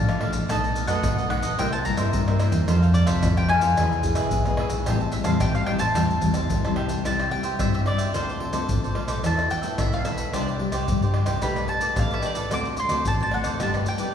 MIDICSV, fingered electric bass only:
0, 0, Header, 1, 2, 480
1, 0, Start_track
1, 0, Key_signature, 0, "minor"
1, 0, Tempo, 545951
1, 437, Time_signature, 4, 2, 24, 8
1, 6200, Key_signature, 0, "major"
1, 12435, End_track
2, 0, Start_track
2, 0, Title_t, "Fingered electric bass"
2, 0, Program_c, 0, 33
2, 0, Note_on_c, 0, 33, 87
2, 261, Note_off_c, 0, 33, 0
2, 289, Note_on_c, 0, 33, 98
2, 403, Note_off_c, 0, 33, 0
2, 430, Note_on_c, 0, 35, 101
2, 739, Note_off_c, 0, 35, 0
2, 772, Note_on_c, 0, 42, 84
2, 885, Note_off_c, 0, 42, 0
2, 912, Note_on_c, 0, 35, 89
2, 1249, Note_off_c, 0, 35, 0
2, 1249, Note_on_c, 0, 33, 83
2, 1364, Note_off_c, 0, 33, 0
2, 1392, Note_on_c, 0, 36, 87
2, 1701, Note_off_c, 0, 36, 0
2, 1735, Note_on_c, 0, 43, 89
2, 1847, Note_off_c, 0, 43, 0
2, 1873, Note_on_c, 0, 43, 87
2, 2182, Note_off_c, 0, 43, 0
2, 2214, Note_on_c, 0, 40, 92
2, 2327, Note_off_c, 0, 40, 0
2, 2352, Note_on_c, 0, 41, 97
2, 2662, Note_off_c, 0, 41, 0
2, 2840, Note_on_c, 0, 41, 88
2, 3146, Note_off_c, 0, 41, 0
2, 3182, Note_on_c, 0, 41, 84
2, 3292, Note_off_c, 0, 41, 0
2, 3320, Note_on_c, 0, 40, 87
2, 3626, Note_off_c, 0, 40, 0
2, 3661, Note_on_c, 0, 35, 87
2, 3771, Note_off_c, 0, 35, 0
2, 3800, Note_on_c, 0, 35, 85
2, 4106, Note_off_c, 0, 35, 0
2, 4140, Note_on_c, 0, 35, 94
2, 4250, Note_off_c, 0, 35, 0
2, 4277, Note_on_c, 0, 33, 102
2, 4584, Note_off_c, 0, 33, 0
2, 4617, Note_on_c, 0, 40, 82
2, 4729, Note_off_c, 0, 40, 0
2, 4759, Note_on_c, 0, 33, 86
2, 5066, Note_off_c, 0, 33, 0
2, 5097, Note_on_c, 0, 33, 76
2, 5209, Note_off_c, 0, 33, 0
2, 5237, Note_on_c, 0, 40, 86
2, 5442, Note_off_c, 0, 40, 0
2, 5465, Note_on_c, 0, 40, 85
2, 5688, Note_off_c, 0, 40, 0
2, 5715, Note_on_c, 0, 38, 82
2, 5933, Note_off_c, 0, 38, 0
2, 5941, Note_on_c, 0, 36, 84
2, 6166, Note_off_c, 0, 36, 0
2, 6193, Note_on_c, 0, 36, 88
2, 6400, Note_off_c, 0, 36, 0
2, 6679, Note_on_c, 0, 43, 82
2, 7088, Note_off_c, 0, 43, 0
2, 7161, Note_on_c, 0, 38, 80
2, 7467, Note_off_c, 0, 38, 0
2, 7495, Note_on_c, 0, 38, 82
2, 7638, Note_on_c, 0, 33, 86
2, 7651, Note_off_c, 0, 38, 0
2, 7945, Note_off_c, 0, 33, 0
2, 7976, Note_on_c, 0, 35, 79
2, 8089, Note_off_c, 0, 35, 0
2, 8118, Note_on_c, 0, 40, 93
2, 8323, Note_off_c, 0, 40, 0
2, 8597, Note_on_c, 0, 35, 83
2, 9007, Note_off_c, 0, 35, 0
2, 9076, Note_on_c, 0, 36, 82
2, 9384, Note_off_c, 0, 36, 0
2, 9421, Note_on_c, 0, 36, 84
2, 9560, Note_on_c, 0, 43, 86
2, 9573, Note_off_c, 0, 36, 0
2, 9866, Note_off_c, 0, 43, 0
2, 9902, Note_on_c, 0, 36, 82
2, 10012, Note_off_c, 0, 36, 0
2, 10042, Note_on_c, 0, 35, 90
2, 10246, Note_off_c, 0, 35, 0
2, 10520, Note_on_c, 0, 33, 84
2, 10929, Note_off_c, 0, 33, 0
2, 11004, Note_on_c, 0, 38, 85
2, 11309, Note_off_c, 0, 38, 0
2, 11343, Note_on_c, 0, 38, 85
2, 11485, Note_on_c, 0, 33, 88
2, 11498, Note_off_c, 0, 38, 0
2, 11789, Note_off_c, 0, 33, 0
2, 11829, Note_on_c, 0, 38, 85
2, 11936, Note_off_c, 0, 38, 0
2, 11967, Note_on_c, 0, 31, 91
2, 12169, Note_off_c, 0, 31, 0
2, 12435, End_track
0, 0, End_of_file